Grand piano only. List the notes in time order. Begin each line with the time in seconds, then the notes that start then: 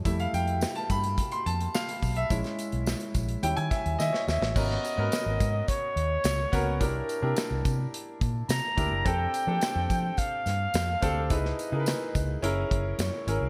0.05 G3 A3 E4 E5
0.20 F5
0.34 G5
0.76 A5
0.90 B5
1.32 C6
1.46 A5
1.74 F5
2.17 E5
2.30 G#3 C#4 E4
3.42 G3 C#4 E4 G5
3.57 G#5
3.71 E5
3.99 D#5
4.13 C#5
4.56 B3 C#4 F#4 A#4
4.97 B3 C#4 F#4 A#4
6.52 B3 C#4 F#4 A#4
6.80 D4 E4 G4 A#4
7.22 D4 E4 G4 A#4
8.77 D4 E4 G4 A#4
9.05 C4 D4 G4 A4
9.47 C4 D4 G4 A4
11.02 C4 D4 G4 A4
11.30 D#4 E4 G#4 B4
11.72 D#4 E4 G#4 A#4
11.80 B4
12.42 C#4 E4 G#4 A#4
13.27 C#4 E4 G#4 A#4